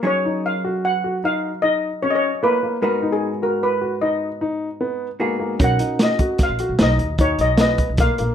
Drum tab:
HH |--------------|--------------|xxxxxxxxxxxxxx|
SD |--------------|--------------|--o-o-o---o-o-|
BD |--------------|--------------|o--oo---o--oo-|